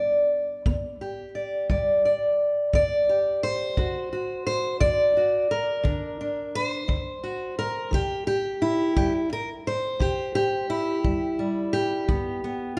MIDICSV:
0, 0, Header, 1, 3, 480
1, 0, Start_track
1, 0, Key_signature, 1, "major"
1, 0, Tempo, 692841
1, 2613, Time_signature, 12, 3, 24, 8
1, 8863, End_track
2, 0, Start_track
2, 0, Title_t, "Steel-string acoustic guitar"
2, 0, Program_c, 0, 25
2, 0, Note_on_c, 0, 55, 69
2, 0, Note_on_c, 0, 62, 47
2, 0, Note_on_c, 0, 74, 41
2, 167, Note_off_c, 0, 55, 0
2, 459, Note_on_c, 0, 59, 63
2, 698, Note_off_c, 0, 62, 0
2, 701, Note_on_c, 0, 67, 45
2, 889, Note_off_c, 0, 59, 0
2, 933, Note_off_c, 0, 74, 0
2, 935, Note_on_c, 0, 74, 45
2, 1175, Note_on_c, 0, 55, 69
2, 1178, Note_off_c, 0, 74, 0
2, 1181, Note_on_c, 0, 74, 45
2, 1414, Note_off_c, 0, 74, 0
2, 1423, Note_on_c, 0, 74, 43
2, 1606, Note_off_c, 0, 55, 0
2, 1893, Note_on_c, 0, 59, 65
2, 1898, Note_off_c, 0, 74, 0
2, 1906, Note_on_c, 0, 74, 98
2, 2135, Note_off_c, 0, 67, 0
2, 2143, Note_on_c, 0, 67, 48
2, 2325, Note_off_c, 0, 59, 0
2, 2376, Note_off_c, 0, 74, 0
2, 2378, Note_on_c, 0, 72, 101
2, 2589, Note_off_c, 0, 67, 0
2, 2616, Note_on_c, 0, 50, 68
2, 2619, Note_on_c, 0, 66, 47
2, 2850, Note_off_c, 0, 66, 0
2, 2859, Note_on_c, 0, 66, 44
2, 3047, Note_off_c, 0, 50, 0
2, 3085, Note_off_c, 0, 72, 0
2, 3094, Note_on_c, 0, 72, 93
2, 3326, Note_off_c, 0, 72, 0
2, 3328, Note_on_c, 0, 74, 102
2, 3335, Note_on_c, 0, 62, 61
2, 3573, Note_off_c, 0, 66, 0
2, 3581, Note_on_c, 0, 66, 44
2, 3766, Note_off_c, 0, 62, 0
2, 3814, Note_off_c, 0, 66, 0
2, 3817, Note_on_c, 0, 70, 92
2, 4042, Note_on_c, 0, 50, 72
2, 4051, Note_on_c, 0, 62, 48
2, 4290, Note_off_c, 0, 74, 0
2, 4292, Note_off_c, 0, 62, 0
2, 4300, Note_on_c, 0, 62, 46
2, 4479, Note_off_c, 0, 50, 0
2, 4535, Note_off_c, 0, 70, 0
2, 4540, Note_on_c, 0, 72, 105
2, 4758, Note_off_c, 0, 62, 0
2, 4766, Note_on_c, 0, 62, 64
2, 5012, Note_on_c, 0, 66, 50
2, 5201, Note_off_c, 0, 62, 0
2, 5252, Note_off_c, 0, 66, 0
2, 5255, Note_on_c, 0, 70, 95
2, 5479, Note_on_c, 0, 48, 71
2, 5494, Note_off_c, 0, 70, 0
2, 5496, Note_off_c, 0, 72, 0
2, 5501, Note_on_c, 0, 67, 102
2, 5721, Note_off_c, 0, 67, 0
2, 5729, Note_on_c, 0, 67, 89
2, 5918, Note_off_c, 0, 48, 0
2, 5970, Note_on_c, 0, 64, 83
2, 6202, Note_off_c, 0, 67, 0
2, 6211, Note_on_c, 0, 67, 86
2, 6212, Note_on_c, 0, 55, 64
2, 6321, Note_off_c, 0, 67, 0
2, 6451, Note_off_c, 0, 64, 0
2, 6461, Note_on_c, 0, 70, 92
2, 6572, Note_off_c, 0, 70, 0
2, 6644, Note_off_c, 0, 55, 0
2, 6701, Note_on_c, 0, 72, 87
2, 6925, Note_on_c, 0, 48, 71
2, 6938, Note_on_c, 0, 67, 89
2, 7163, Note_off_c, 0, 67, 0
2, 7172, Note_on_c, 0, 67, 92
2, 7361, Note_off_c, 0, 48, 0
2, 7409, Note_off_c, 0, 72, 0
2, 7411, Note_on_c, 0, 64, 86
2, 7653, Note_on_c, 0, 55, 69
2, 7883, Note_off_c, 0, 55, 0
2, 7891, Note_on_c, 0, 55, 49
2, 7893, Note_off_c, 0, 67, 0
2, 8127, Note_on_c, 0, 67, 95
2, 8371, Note_on_c, 0, 43, 72
2, 8372, Note_off_c, 0, 55, 0
2, 8373, Note_off_c, 0, 64, 0
2, 8375, Note_on_c, 0, 59, 50
2, 8611, Note_off_c, 0, 59, 0
2, 8619, Note_on_c, 0, 59, 46
2, 8805, Note_off_c, 0, 43, 0
2, 8843, Note_off_c, 0, 67, 0
2, 8863, Note_off_c, 0, 59, 0
2, 8863, End_track
3, 0, Start_track
3, 0, Title_t, "Drums"
3, 456, Note_on_c, 9, 36, 69
3, 525, Note_off_c, 9, 36, 0
3, 1175, Note_on_c, 9, 36, 60
3, 1244, Note_off_c, 9, 36, 0
3, 1895, Note_on_c, 9, 36, 64
3, 1964, Note_off_c, 9, 36, 0
3, 2614, Note_on_c, 9, 36, 60
3, 2683, Note_off_c, 9, 36, 0
3, 3333, Note_on_c, 9, 36, 65
3, 3402, Note_off_c, 9, 36, 0
3, 4052, Note_on_c, 9, 36, 62
3, 4121, Note_off_c, 9, 36, 0
3, 4773, Note_on_c, 9, 36, 61
3, 4842, Note_off_c, 9, 36, 0
3, 5493, Note_on_c, 9, 36, 63
3, 5562, Note_off_c, 9, 36, 0
3, 6212, Note_on_c, 9, 36, 68
3, 6281, Note_off_c, 9, 36, 0
3, 6931, Note_on_c, 9, 36, 60
3, 7000, Note_off_c, 9, 36, 0
3, 7652, Note_on_c, 9, 36, 61
3, 7721, Note_off_c, 9, 36, 0
3, 8374, Note_on_c, 9, 36, 66
3, 8443, Note_off_c, 9, 36, 0
3, 8863, End_track
0, 0, End_of_file